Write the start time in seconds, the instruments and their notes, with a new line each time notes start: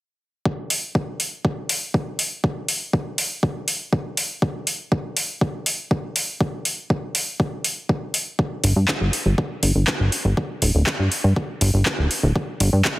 0.45 kick
0.70 open hi-hat
0.95 kick
1.20 open hi-hat
1.45 kick
1.69 open hi-hat
1.94 kick
2.19 open hi-hat
2.44 kick
2.68 open hi-hat
2.93 kick
3.18 open hi-hat
3.43 kick
3.68 open hi-hat
3.93 kick
4.17 open hi-hat
4.42 kick
4.67 open hi-hat
4.92 kick
5.17 open hi-hat
5.41 kick
5.66 open hi-hat
5.91 kick
6.16 open hi-hat
6.41 kick
6.65 open hi-hat
6.90 kick
7.15 open hi-hat
7.40 kick
7.64 open hi-hat
7.89 kick
8.14 open hi-hat
8.39 kick
8.64 analog synth bass G1, open hi-hat
8.76 analog synth bass G2
8.88 kick, clap
9.01 analog synth bass G1
9.13 open hi-hat
9.26 analog synth bass G1
9.38 kick
9.63 analog synth bass G1, open hi-hat
9.75 analog synth bass G1
9.87 kick, clap
10.00 analog synth bass G1
10.12 open hi-hat
10.25 analog synth bass G1
10.37 kick
10.62 analog synth bass D1, open hi-hat
10.75 analog synth bass D1
10.86 kick, clap
10.99 analog synth bass G2
11.12 open hi-hat
11.24 analog synth bass G2
11.36 kick
11.61 analog synth bass G1, open hi-hat
11.74 analog synth bass G1
11.86 kick, clap
11.99 analog synth bass D1
12.11 open hi-hat
12.23 analog synth bass D1
12.36 kick
12.60 analog synth bass G1, open hi-hat
12.73 analog synth bass G2
12.85 kick, clap